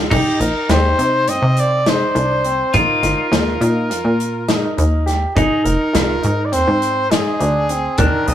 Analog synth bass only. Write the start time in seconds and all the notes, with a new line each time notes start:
0.12 C2
0.40 A#1
0.69 D#2
0.99 C3
1.27 G2
1.42 C3
2.15 C2
2.74 A#1
3.03 G1
3.32 D#2
3.61 A#2
3.91 F2
4.05 A#2
4.78 D#2
5.36 G#1
5.65 F1
5.95 C2
6.24 G#2
6.54 D#2
6.68 G#2
7.41 D2
7.98 D#2
8.28 C2